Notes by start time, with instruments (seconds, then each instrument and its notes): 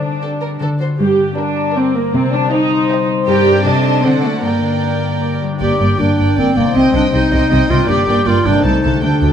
Already playing: cello section D3, harp D3 A4, viola section D4
0.02 harp D4
0.21 harp G4, violin section A4 A5
0.40 harp A4, violin section A#4
0.60 harp D3, cello section D3, violin section A4 A5
0.80 harp F#4 A4, violin section C5
0.98 cello section G2, harp G2, viola section G4
1.19 harp D3
1.37 viola section D4, harp D4, violin section A#4 D5 G5
1.56 harp A#4
1.75 viola section C4, violin section A#4 D5 G5, harp D5
1.95 viola section A#3, harp A#4
2.14 harp C3, cello section C3, viola section C4
2.33 harp G3, viola section D4
2.51 harp D#4, viola section D#4, violin section C5 D#5 G5
2.71 harp C5
2.89 violin section C5 D#5 G5, harp D#5
3.08 harp C5
3.27 cello section G2, harp G2, viola section G4, violin section A#4 D5 G5
3.47 harp D4 G4
3.64 cello section C3, harp C3, viola section D4, violin section A4 D#5 A5
3.84 harp D#4 A4
4.03 cello section D3, harp D3, viola section C4, violin section A4 D5 F#5
4.22 viola section A3, harp D4 F#4
4.42 harp G2, cello section G2, viola section A#3, violin section A#4 D5 G5
4.62 harp D3
4.82 harp D4
5.02 harp G4
5.21 harp D5
5.41 harp G2 G4
5.47 harp A#3
5.52 harp D4
5.56 cello section G2, harp G4, violin section D5
5.61 double bass section G1, viola section A#3, clarinet G4, violin section G5
5.79 double bass section G1, cello section G2, viola section A#3, violin section D5 G5
5.98 double bass section G1, cello section G2, viola section A#3, clarinet D4, violin section D5 G5
6.18 double bass section G1, cello section G2, viola section A#3, violin section D5 G5
6.36 double bass section G1, cello section G2, viola section A#3, clarinet C4, violin section D5 G5
6.56 double bass section G1, cello section G2, harp C3, viola section A#3, clarinet A#3, violin section D5 G5
6.62 harp C4
6.66 harp D#4
6.71 double bass section C2, harp G4
6.75 cello section C3, viola section C4, clarinet C4, violin section D#5 G5
6.93 double bass section C2, cello section C3, viola section C4, clarinet D4, violin section D#5 G5
7.12 double bass section C2, cello section C3, viola section C4, clarinet D#4, violin section D#5 G5
7.31 double bass section C2, cello section C3, viola section C4, violin section D#5 G5
7.50 double bass section C2, cello section C3, viola section C4, violin section D#5 G5
7.69 double bass section C2, harp G2, cello section C3, viola section C4, clarinet F4, violin section D#5 G5
7.75 harp A#3
7.80 harp D4
7.84 viola section A#3, harp G4
7.88 double bass section G1, cello section G2, clarinet G4, violin section D5 G5
8.07 double bass section G1, cello section G2, viola section A#3, violin section D5 G5
8.26 double bass section G1, cello section G2, viola section A#3, clarinet F4, violin section D5 G5
8.44 double bass section G1, cello section G2, harp C3, viola section A#3, clarinet D4, violin section D5 G5
8.51 harp A3
8.55 harp D#4
8.60 viola section A3, clarinet D#4, harp A4
8.64 cello section C2, double bass section C2, violin section A4 A5
8.83 cello section C2, double bass section C2, harp D3, viola section A3, violin section A4 A5
8.89 harp A3
8.94 harp G4
8.98 viola section A3, harp A4, violin section G5
9.02 double bass section D2, cello section D2, clarinet D4, violin section A4
9.22 cello section D2, double bass section D2, viola section A3, violin section A4 G5